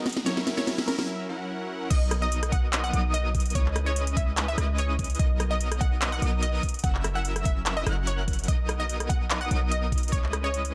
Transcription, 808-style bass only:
1.91 2.92 B1 loud
2.93 3.53 B1 loud
3.55 4.56 C#2 medium
4.58 5.17 C#2 loud
5.20 6.20 B1 loud
6.22 6.60 B1 loud
6.84 7.85 F#1 loud
7.87 8.50 F#1 loud
8.48 9.49 B1 loud
9.51 10.14 B1 loud
10.13 10.74 C#2 loud

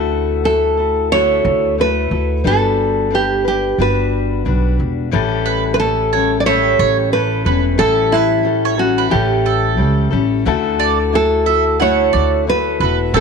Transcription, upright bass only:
0.00 1.41 D2 medium
1.45 2.08 D2 loud
2.11 2.42 D2 medium
2.45 3.75 G1 medium
3.78 4.42 G1 medium
4.46 4.77 B1 medium
4.79 5.10 E1 medium
5.13 6.76 A1 medium
6.79 7.42 A1 medium
7.46 7.77 E1 medium
7.79 9.09 A1 medium
9.13 9.80 A1 medium
9.80 10.11 C#2 medium
10.13 10.44 A1 medium
10.46 12.10 D2 loud
12.14 12.77 D2 medium
12.80 13.11 E1 medium
13.14 13.20 A1 medium

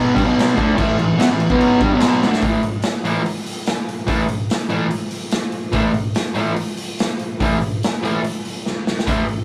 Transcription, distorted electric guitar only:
0.00 0.14 B2 medium
0.00 0.14 F#3 loud
0.00 0.15 B3 loud
0.14 0.24 G3 medium
0.14 0.24 D4 medium
0.23 0.55 B2 loud
0.23 0.55 F#3 loud
0.23 0.55 B3 loud
0.55 0.75 D3 medium
0.55 0.76 A3 medium
0.55 0.77 D4 medium
0.75 0.96 A2 medium
0.75 0.96 E3 loud
0.75 0.97 A3 loud
0.97 1.14 A2 medium
0.97 1.14 E3 medium
1.18 1.28 E3 medium
1.18 1.28 B3 loud
1.29 1.45 A2 medium
1.29 1.46 E3 medium
1.50 1.80 B2 loud
1.50 1.80 F#3 medium
1.50 1.81 B3 loud
1.81 1.90 G3 medium
1.81 1.91 D4 medium
1.93 2.22 B2 loud
1.93 2.22 F#3 loud
1.93 2.23 B3 loud
2.23 2.42 D3 medium
2.23 2.43 A3 medium
2.23 2.43 D4 medium
2.43 2.59 A2 medium
2.43 2.60 E3 medium
2.43 2.60 A3 medium
3.04 3.21 A2 medium
3.04 3.21 E3 medium
3.04 3.21 A3 medium
4.07 4.24 A2 medium
4.07 4.24 E3 medium
4.07 4.24 A3 loud
4.69 4.86 A2 medium
4.69 4.86 E3 loud
4.69 4.87 A3 medium
5.73 5.90 A2 medium
5.73 5.90 E3 medium
5.73 5.91 A3 loud
6.34 6.52 A2 medium
6.34 6.52 E3 loud
6.34 6.53 A3 loud
7.40 7.57 A2 medium
7.40 7.57 E3 medium
7.40 7.58 A3 medium
8.03 8.19 A2 medium
8.03 8.20 E3 medium
8.03 8.20 A3 loud
9.07 9.23 A2 medium
9.07 9.24 E3 medium
9.07 9.24 A3 medium

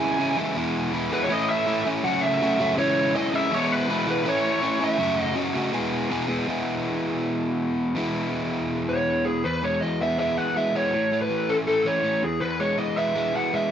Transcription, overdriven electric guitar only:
0.00 0.18 C#3 medium
0.00 0.19 E3 loud
0.00 0.18 G#3 loud
0.00 0.19 C#4 loud
0.00 0.20 E4 loud
0.19 0.36 C#3 medium
0.19 0.37 E3 medium
0.19 0.37 G#3 medium
0.19 0.37 C#4 medium
0.19 0.38 E4 loud
0.37 0.55 C#3 medium
0.37 0.56 E3 medium
0.37 0.55 G#3 medium
0.37 0.56 C#4 medium
0.37 0.58 E4 medium
0.56 0.91 E2 loud
0.56 0.92 B2 loud
0.56 0.93 E3 loud
0.56 0.93 G#3 loud
0.56 0.93 B3 loud
0.56 0.94 E4 loud
0.92 1.10 E2 medium
0.92 1.10 B2 medium
0.92 1.11 E3 medium
0.92 1.11 G#3 medium
0.92 1.12 B3 medium
0.92 1.12 E4 medium
1.11 1.29 E2 medium
1.11 1.29 B2 medium
1.11 1.29 E3 medium
1.11 1.29 G#3 medium
1.11 1.30 B3 medium
1.11 1.30 E4 medium
1.29 1.66 E3 loud
1.29 1.65 A3 loud
1.29 1.66 C#4 loud
1.29 1.67 E4 loud
1.66 1.84 E3 medium
1.66 1.84 A3 medium
1.66 1.85 C#4 medium
1.66 1.85 E4 medium
1.85 2.03 E3 medium
1.85 2.03 A3 medium
1.85 2.03 C#4 medium
1.85 2.04 E4 medium
2.03 2.40 F#2 loud
2.03 2.40 C#3 loud
2.03 2.40 F#3 loud
2.03 2.41 A3 loud
2.03 2.41 C#4 loud
2.03 2.41 F#4 loud
2.41 2.58 F#2 medium
2.41 2.59 C#3 medium
2.41 2.59 F#3 medium
2.41 2.59 A3 medium
2.41 2.60 C#4 loud
2.41 2.60 F#4 loud
2.59 2.77 F#2 medium
2.59 2.76 C#3 medium
2.59 2.77 F#3 loud
2.59 2.77 A3 medium
2.59 2.78 C#4 loud
2.59 2.78 F#4 medium
2.77 3.13 C#3 loud
2.77 3.15 E3 loud
2.77 3.14 G#3 loud
2.77 3.15 C#4 loud
2.77 3.16 E4 loud
3.15 3.31 C#3 medium
3.15 3.33 E3 loud
3.15 3.32 G#3 medium
3.15 3.33 C#4 loud
3.15 3.34 E4 medium
3.32 3.50 C#3 medium
3.32 3.51 E3 medium
3.32 3.51 G#3 medium
3.32 3.51 C#4 medium
3.32 3.52 E4 medium
3.51 3.87 E2 loud
3.51 3.88 B2 loud
3.51 3.89 E3 loud
3.51 3.88 G#3 loud
3.51 3.89 B3 loud
3.51 3.90 E4 loud
3.89 4.05 E2 medium
3.89 4.05 B2 medium
3.89 4.06 E3 medium
3.89 4.06 G#3 loud
3.89 4.06 B3 medium
3.89 4.08 E4 medium
4.06 4.24 E2 medium
4.06 4.24 B2 medium
4.06 4.24 E3 medium
4.06 4.24 G#3 medium
4.06 4.25 B3 medium
4.06 4.25 E4 medium
4.24 4.62 E3 medium
4.24 4.61 A3 loud
4.24 4.62 C#4 loud
4.24 4.63 E4 loud
4.62 4.80 E3 medium
4.62 4.80 A3 medium
4.62 4.80 C#4 medium
4.62 4.81 E4 medium
4.80 4.99 E3 medium
4.80 4.98 A3 medium
4.80 4.98 C#4 medium
4.80 5.00 E4 medium
4.99 5.34 F#2 loud
4.99 5.34 C#3 loud
4.99 5.35 F#3 loud
4.99 5.35 A3 loud
4.99 5.36 C#4 loud
4.99 5.36 F#4 loud
5.35 5.53 F#2 loud
5.35 5.54 C#3 medium
5.35 5.54 F#3 loud
5.35 5.55 A3 medium
5.35 5.55 C#4 medium
5.35 5.56 F#4 loud
5.54 5.72 F#2 medium
5.54 5.73 C#3 medium
5.54 5.73 F#3 medium
5.54 5.73 A3 medium
5.54 5.73 C#4 medium
5.54 5.73 F#4 loud
5.73 6.09 E2 loud
5.73 6.09 B2 loud
5.73 6.10 E3 loud
5.73 6.10 G#3 loud
5.73 6.10 B3 loud
5.73 6.11 G#4 loud
6.10 6.26 E2 medium
6.10 6.27 B2 medium
6.10 6.27 E3 medium
6.10 6.28 G#3 medium
6.10 6.28 B3 medium
6.10 6.28 G#4 medium
6.28 6.46 E2 medium
6.28 6.46 B2 medium
6.28 6.46 E3 medium
6.28 6.46 G#3 medium
6.28 6.47 B3 medium
6.28 6.47 G#4 medium
6.47 7.95 E2 loud
6.47 7.94 B2 medium
6.47 7.96 E3 medium
6.47 7.96 G#3 loud
6.47 7.97 B3 medium
6.47 7.97 E4 loud
7.95 9.43 E2 loud
7.95 9.43 B2 medium
7.95 9.43 E3 loud
7.95 9.43 G#3 loud
7.95 9.44 B3 loud
7.95 9.44 E4 medium
9.45 10.38 E2 medium
9.63 10.17 G#3 medium
9.82 10.38 E3 medium
10.01 10.74 B3 medium
10.19 10.55 G#3 medium
10.38 11.29 E3 medium
10.56 10.93 G#3 medium
10.75 10.93 B3 medium
10.94 11.86 A2 medium
11.12 11.66 A3 medium
11.30 11.84 E3 medium
11.49 12.23 C#4 medium
11.67 12.02 A3 medium
11.85 12.78 E3 medium
12.04 12.23 A3 medium
12.23 12.40 E2 medium
12.42 13.35 E2 medium
12.60 13.15 G#3 medium
12.79 13.35 E3 medium
12.97 13.71 B3 medium
13.16 13.53 G#3 medium
13.35 13.71 E3 medium
13.53 13.71 G#3 medium

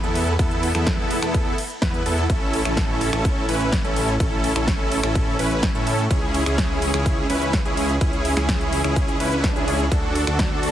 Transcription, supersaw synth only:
0.03 0.33 B3 medium
0.03 0.33 E4 medium
0.03 0.33 A4 medium
0.39 0.72 B3 medium
0.39 0.72 E4 medium
0.39 0.72 A4 medium
0.75 1.20 B3 loud
0.75 1.20 E4 medium
0.75 1.20 A4 loud
1.23 1.55 B3 medium
1.23 1.55 E4 medium
1.23 1.55 A4 loud
1.82 2.03 B3 loud
1.82 2.03 E4 loud
1.82 2.03 B4 loud
2.06 2.26 B3 medium
2.06 2.26 E4 medium
2.06 2.26 A4 loud
2.30 2.63 C#4 medium
2.30 2.63 E4 medium
2.30 2.63 A4 medium
2.65 3.10 C#4 medium
2.65 3.10 E4 medium
2.65 3.10 A4 loud
3.13 3.46 C#4 medium
3.13 3.46 E4 medium
3.13 3.46 A4 loud
3.49 3.78 C#4 medium
3.49 3.78 E4 medium
3.49 3.78 B4 loud
3.84 4.14 C#4 medium
3.84 4.14 E4 medium
3.84 4.14 A4 medium
4.20 4.53 C#4 medium
4.20 4.53 E4 medium
4.20 4.53 A4 medium
4.56 5.01 C#4 medium
4.56 5.01 E4 medium
4.56 5.01 A4 loud
5.03 5.36 C#4 loud
5.03 5.36 E4 medium
5.03 5.36 A4 loud
5.39 5.69 C#4 medium
5.39 5.69 E4 medium
5.39 5.69 B4 loud
5.75 6.04 C#4 medium
5.75 6.04 E4 medium
5.75 6.04 A4 medium
6.11 6.43 C#4 medium
6.11 6.43 E4 medium
6.11 6.43 G#4 medium
6.46 6.91 C#4 medium
6.46 6.91 E4 medium
6.46 6.91 G#4 loud
6.94 7.27 C#4 medium
6.94 7.27 E4 medium
6.94 7.27 G#4 loud
7.30 7.59 C#4 medium
7.30 7.59 E4 medium
7.30 7.59 B4 loud
7.65 7.95 C#4 medium
7.65 7.95 E4 medium
7.65 7.95 G#4 medium
8.01 8.34 C#4 medium
8.01 8.34 E4 medium
8.01 8.34 G#4 medium
8.37 8.82 C#4 medium
8.37 8.82 E4 medium
8.37 8.82 G#4 loud
8.84 9.17 C#4 medium
8.84 9.17 E4 medium
8.84 9.17 G#4 loud
9.20 9.50 C#4 medium
9.20 9.50 E4 medium
9.20 9.50 B4 loud
9.56 9.85 C#4 medium
9.56 9.85 E4 medium
9.56 9.85 G#4 medium
9.92 10.24 D4 medium
9.92 10.24 F#4 medium
9.92 10.24 A4 medium
10.27 10.71 D4 medium
10.27 10.71 F#4 medium
10.27 10.71 A4 loud

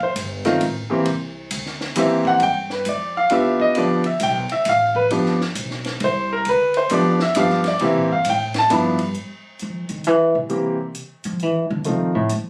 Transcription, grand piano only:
0.03 0.12 C5 medium
0.45 0.60 D#3 medium
0.45 0.60 A3 medium
0.45 0.60 C4 medium
0.45 0.60 F4 medium
0.90 1.05 E3 medium
0.90 1.05 A#3 medium
0.90 1.05 C4 medium
0.90 1.05 G4 medium
1.96 2.41 E3 medium
1.96 2.42 A#3 medium
1.96 2.42 C4 medium
1.96 2.42 G4 medium
1.96 2.26 E5 medium
2.27 2.42 F#5 loud
2.43 2.71 G5 loud
2.72 2.87 B4 medium
2.89 3.16 D5 medium
3.17 3.32 F5 medium
3.31 3.75 B3 medium
3.31 3.75 D4 medium
3.31 3.99 F4 medium
3.31 3.76 G4 medium
3.31 3.60 E5 medium
3.61 3.76 D#5 medium
3.76 4.03 F3 medium
3.76 4.03 B3 medium
3.76 4.03 D4 medium
3.76 4.03 G4 medium
3.76 4.06 D5 medium
4.06 4.21 E5 medium
4.23 4.51 G5 loud
4.52 4.67 E5 medium
4.69 4.96 F5 loud
4.96 5.05 B4 medium
5.11 5.37 F3 medium
5.11 5.38 B3 medium
5.11 5.38 D4 medium
5.11 5.38 G4 medium
6.04 6.31 C5 medium
6.33 6.47 A#4 medium
6.49 6.76 B4 medium
6.77 6.92 C5 medium
6.91 7.17 F3 medium
6.91 7.17 B3 medium
6.91 7.17 D4 medium
6.91 7.18 G4 medium
6.91 7.21 D5 medium
7.22 7.36 E5 medium
7.36 7.62 F3 medium
7.36 7.62 B3 medium
7.36 7.62 D4 medium
7.36 7.63 G4 medium
7.36 7.66 F5 medium
7.68 7.82 D5 medium
7.81 8.07 E3 medium
7.81 8.08 A#3 medium
7.81 8.08 C4 medium
7.81 8.08 G4 medium
7.81 8.11 E5 medium
8.12 8.27 F5 medium
8.29 8.56 G5 loud
8.58 8.72 A5 loud
8.70 8.97 F3 medium
8.70 8.97 B3 medium
8.70 8.97 D4 medium
8.70 8.97 E4 medium
8.70 9.07 B5 medium
10.49 10.76 E3 soft
10.49 10.76 G3 soft
10.49 10.76 A#3 soft
10.49 10.77 C4 soft
10.49 10.77 G4 medium
11.85 12.11 D#3 soft
11.85 12.11 F3 soft
11.85 12.12 A3 soft
11.85 12.12 C4 soft
11.85 12.12 F4 soft

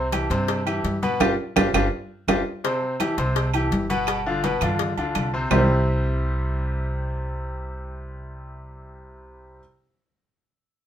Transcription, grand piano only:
0.12 0.27 E3 medium
0.12 0.27 E4 medium
0.12 0.27 G4 medium
0.30 0.60 C3 medium
0.30 0.60 C4 medium
0.30 0.60 C5 medium
0.66 0.96 E3 medium
0.66 0.96 E4 medium
0.66 0.96 G4 medium
1.03 1.17 B2 medium
1.03 1.17 B3 medium
1.03 1.18 B4 medium
1.20 1.32 D4 loud
1.20 1.32 F4 loud
1.20 1.32 G4 loud
1.56 1.68 D4 loud
1.56 1.68 F4 medium
1.56 1.68 G4 loud
1.74 1.86 D4 loud
1.74 1.86 F4 loud
1.74 1.86 G4 medium
2.28 2.40 D4 medium
2.28 2.40 F4 loud
2.28 2.40 G4 medium
2.64 2.93 C3 medium
2.64 2.94 C4 medium
2.64 2.94 C5 medium
3.00 3.14 E3 medium
3.00 3.15 E4 medium
3.00 3.15 G4 medium
3.18 3.47 C3 medium
3.18 3.47 C4 medium
3.18 3.48 C5 medium
3.54 3.83 E3 medium
3.54 3.83 E4 medium
3.54 3.84 G4 medium
3.90 4.19 B2 medium
3.90 4.19 B3 loud
3.90 4.19 B4 loud
4.26 4.41 D3 medium
4.26 4.41 D4 medium
4.26 4.41 F4 medium
4.44 4.59 B2 medium
4.44 4.59 B3 medium
4.44 4.59 B4 medium
4.62 4.91 D3 medium
4.62 4.92 D4 medium
4.62 4.92 F4 medium
4.98 5.27 D3 medium
4.98 5.27 D4 medium
4.98 5.28 F4 medium
5.34 5.48 C3 medium
5.34 5.48 C4 medium
5.34 5.49 C5 medium
5.51 9.59 C3 medium
5.51 9.59 G3 medium
5.51 9.59 C4 medium
5.51 9.60 E4 medium
5.51 9.59 G4 medium
5.51 9.60 C5 medium

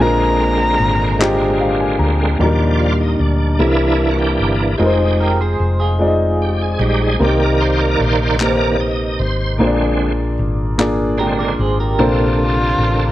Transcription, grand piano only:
0.00 1.16 A#2 medium
0.00 0.73 G#3 medium
0.00 0.73 C4 medium
0.00 0.74 D4 medium
0.00 0.74 F4 medium
0.00 0.74 A#4 medium
1.19 1.93 G#3 medium
1.19 1.93 C4 medium
1.19 1.94 D4 medium
1.19 1.94 F4 medium
1.19 1.94 G4 medium
1.61 1.79 F5 medium
1.80 1.99 G#5 medium
1.99 2.37 A#5 medium
2.39 3.56 A#2 medium
2.39 2.46 F#3 medium
2.39 3.13 A#3 medium
2.39 3.14 D4 medium
2.39 3.14 D#4 medium
2.39 3.14 A#4 medium
2.45 3.16 G3 medium
3.59 4.76 C3 medium
3.59 4.33 G3 medium
3.59 4.33 A#3 medium
3.59 4.34 C4 soft
3.59 4.34 E4 medium
3.59 3.67 A4 medium
3.67 4.37 A#4 medium
4.78 5.53 G#3 medium
4.78 5.53 C4 medium
4.78 5.53 D#4 medium
4.78 5.53 F4 medium
4.78 4.87 A#4 medium
4.87 5.57 C5 medium
5.99 6.73 G#3 medium
5.99 6.73 C4 medium
5.99 6.74 D#4 medium
5.99 6.74 F4 medium
5.99 6.07 D5 medium
6.08 6.78 D#5 medium
7.19 8.36 C3 medium
7.19 7.93 A#3 medium
7.19 7.94 C4 medium
7.19 7.94 D#4 medium
7.19 7.94 G4 medium
7.19 7.94 C5 medium
8.40 9.14 A#3 medium
8.40 9.14 C4 medium
8.40 9.14 D#4 medium
8.40 9.14 G4 medium
8.40 8.48 B4 medium
8.48 9.18 C5 medium
9.59 10.76 A#2 medium
9.59 10.33 A#3 medium
9.59 10.33 D4 medium
9.59 10.34 F4 medium
9.59 10.34 G#4 medium
9.59 9.67 C5 medium
9.67 10.37 D5 medium
10.78 11.52 A#3 medium
10.78 11.53 D4 medium
10.78 11.53 F4 medium
10.78 11.53 G#4 medium
10.78 11.53 D5 medium
11.98 13.12 C3 medium
11.98 12.72 A#3 medium
11.98 12.73 D4 medium
11.98 12.73 F4 medium
11.98 12.73 A4 medium
11.98 12.73 C5 medium

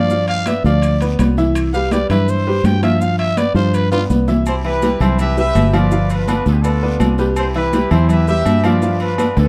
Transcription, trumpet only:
0.00 0.26 D5 loud
0.29 0.49 F5 loud
0.48 0.65 E5 medium
0.66 0.99 D5 medium
1.74 1.94 F5 loud
1.92 2.10 D5 medium
2.10 2.31 B4 medium
2.29 2.67 C5 medium
2.66 2.83 G5 medium
2.83 3.03 E5 medium
3.01 3.18 F5 loud
3.19 3.39 E5 loud
3.38 3.55 D5 medium
3.56 3.76 C5 loud
3.74 3.91 B4 medium
3.92 4.03 F4 loud

